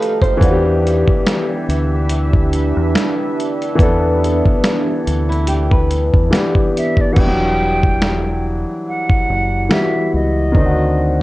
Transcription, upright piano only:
Already playing: F3 A3 D#4 G4
0.37 E3 B3
0.42 D4 F#4
0.51 G4
3.75 E3 B3
3.80 D4 A4
6.31 E3 B3 D4 G4
7.13 E3 G3
7.18 D4 E4
7.27 F#3
9.69 E3 G3 E4 F#4
10.52 D#3 C4
10.57 D4 D#4
10.66 F#4

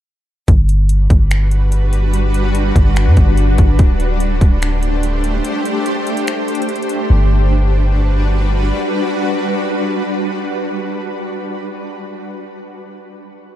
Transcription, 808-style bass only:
0.48 G1
1.10 G1
2.76 G1
3.07 G2
3.17 G1
3.58 G1
3.79 D1
4.41 D1
7.10 G1

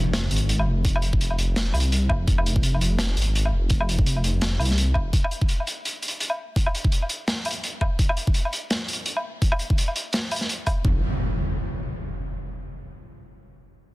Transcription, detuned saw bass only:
Already playing: F1
0.31 G#1
0.67 F1
1.38 F1
1.74 C2
2.10 F1
2.28 F1
2.81 F1
3.17 G#1
3.53 F1
4.24 F1
4.60 C2
4.95 F1
10.85 F1

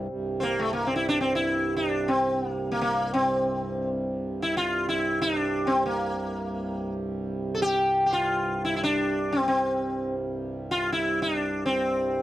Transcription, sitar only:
0.40 A#3 C4
0.59 A3
0.73 A#3
0.87 C4
0.96 E4
1.09 D4
1.21 C4
1.35 E4
1.77 D4
2.08 C4
2.49 A#3
2.72 A#3
2.81 A#3
3.14 C4
4.42 E4
4.57 F4
4.89 E4
5.22 D#4
5.38 D4
5.67 C4
5.86 A#3
7.55 A4
7.62 G4
8.06 G4
8.13 F4
8.65 E4
8.76 E4
8.83 D4
9.32 C4
9.48 C4
10.71 F4
10.92 E4
11.22 D4
11.66 C4

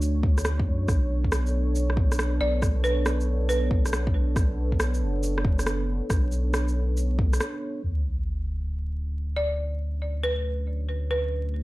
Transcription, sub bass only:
Already playing: D2
0.67 F#2
0.88 B1
2.40 B1
3.71 B1
4.36 B1
5.01 F#1
6.10 B1
7.85 D2

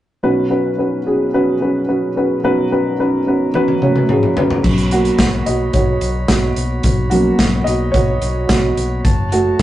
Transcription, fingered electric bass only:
4.64 B1
5.19 B1
5.47 B1
5.73 B1
6.01 B1
6.29 B1
6.56 B1
6.84 B1
7.39 B1
7.66 B1
7.94 B1
8.22 B1
8.49 B1
8.77 B1
9.05 F#1

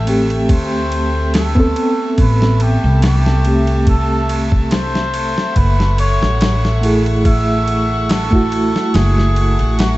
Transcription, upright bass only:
Already playing: A1
0.49 D2
2.19 A1
2.84 C2
5.56 F#1
6.22 A1
8.95 F#1
9.60 A1

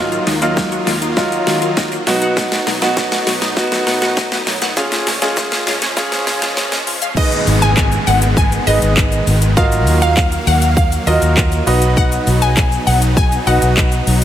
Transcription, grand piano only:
Already playing: F#3 D#4 F4
0.42 F#3 D#4 F4
1.17 F#3 D#4 F4
2.07 B3 D#4 F#4
2.82 B3 D#4 F#4
3.57 B3 D#4 F#4
4.77 C#4 F4 G#4
5.22 C#4 F4 G#4
5.97 C#4 F4 G#4
7.17 D#4 G#4 B4 D#5
8.67 D#4 G#4 B4 D#5
9.57 F4 F#4 A#4 D#5
11.07 F4 F#4 A#4 D#5
11.67 D#4 F#4 B4 D#5
13.47 D#4 F#4 B4 D#5

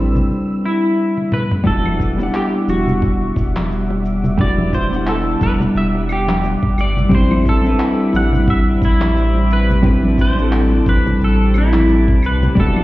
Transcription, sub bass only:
Already playing: A1
1.66 E1
2.68 E1
3.36 E1
5.41 E1
5.75 E1
6.77 G1
7.11 A1
8.14 A1
8.82 A1
10.86 A1
11.21 A1
12.23 C2
12.57 E1

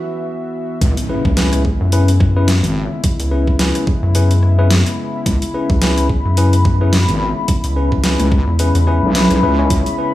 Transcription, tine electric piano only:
1.09 C#4 E4 G#4 B4
1.37 C#4 E4 G#4 B4
1.93 C#4 E4 G#4 B4
2.36 C#4 E4 G#4 B4
3.31 C#4 E4 G#4 B4
3.60 C#4 E4 G#4 B4
4.15 C#4 E4 G#4 B4
4.59 C#4 E4 G#4 B4
5.54 C#4 E4 G#4 B4
5.82 C#4 E4 G#4 B4
6.38 C#4 E4 G#4 B4
6.81 C#4 E4 G#4 B4
7.76 C#4 E4 G#4 B4
8.04 C#4 E4 G#4 B4
8.60 C#4 E4 G#4 B4
8.87 C#4 E4 G#4 B4
9.15 C#4 E4 G#4 B4
9.43 C#4 E4 G#4 B4
9.59 C#4 E4 G#4 C#5
9.98 C#4 E4 G#4 B4

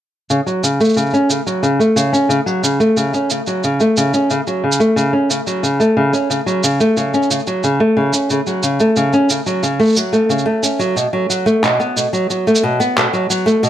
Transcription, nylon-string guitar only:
0.30 C#3
0.46 F#3
0.63 C#3
0.80 A3
0.96 C#3
1.13 C#4
1.30 C#3
1.46 F#3
1.63 C#3
1.79 A3
1.96 C#3
2.13 C#4
2.29 C#3
2.46 F#3
2.63 C#3
2.80 A3
2.97 C#3
3.14 C#4
3.31 C#3
3.47 F#3
3.64 C#3
3.80 A3
3.97 C#3
4.14 C#4
4.30 C#3
4.47 F#3
4.64 C#3
4.80 A3
4.96 C#3
5.13 C#4
5.30 C#3
5.47 F#3
5.63 C#3
5.80 A3
5.97 C#3
6.13 C#4
6.30 C#3
6.46 F#3
6.64 C#3
6.80 A3
6.97 C#3
7.14 C#4
7.30 C#3
7.47 F#3
7.64 C#3
7.80 A3
7.97 C#3
8.13 C#4
8.30 C#3
8.47 F#3
8.63 C#3
8.80 A3
8.97 C#3
9.13 C#4
9.30 C#3
9.46 F#3
9.63 C#3
9.80 A3
9.97 F#3
10.13 A3
10.29 C#3
10.46 A3
10.63 C#4
10.79 F#3
10.96 B2
11.13 F#3
11.30 F#3
11.46 A3
11.63 B2
11.80 B3
11.96 B2
12.13 F#3
12.30 F#3
12.47 A3
12.63 B2
12.80 B3
12.97 B2
13.13 F#3
13.30 F#3
13.46 A3
13.63 B2

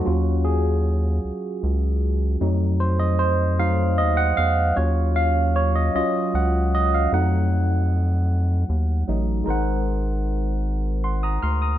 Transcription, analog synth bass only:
0.07 D#2
1.24 C#2
1.63 C#2
2.41 F2
3.98 D#2
4.38 E2
4.77 D#2
5.95 C#2
6.34 C#2
7.12 F2
8.69 D#2
9.08 A1
9.47 G#1
11.43 D2

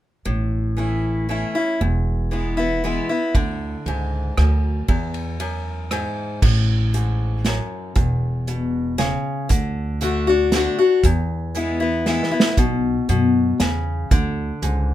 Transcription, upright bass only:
0.26 A1
1.81 E1
3.35 D2
3.86 C#2
4.37 D2
4.89 E2
6.42 A1
7.96 E1
9.51 D2
11.04 E2
12.57 B1
13.09 F#2
13.60 E2
14.11 D2
14.62 C#2

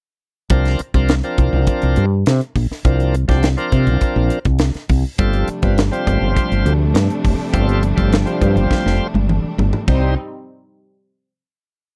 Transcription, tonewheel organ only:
0.50 F3 C4 D4 A#4
0.94 F3 C4 D4 A#4
1.24 F3 C4 D4 A#4
2.85 F3 C4 D4 A#4
3.28 F3 C4 D4 G4
3.57 F3 C4 D4 A#4
5.18 G3 C4 F4 A4
5.62 G3 C4 F4 B4
5.92 G3 C4 F4 C5
7.53 G3 C4 F4 A4
7.96 G3 C4 F4 A4
8.26 G3 C4 F4 C5
9.88 G3 C4 D#4 C5

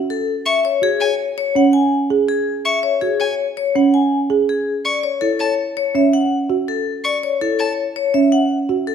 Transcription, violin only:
0.46 C#6
1.00 G#5
2.65 C#6
3.20 G#5
4.85 C#6
5.40 A5
7.04 C#6
7.59 A5

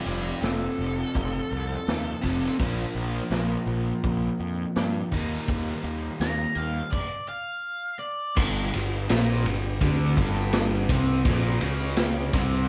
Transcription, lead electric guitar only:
0.05 D4 G4
0.43 A4
6.21 A#5
6.55 F5
6.91 D5
7.28 F5
7.99 D5

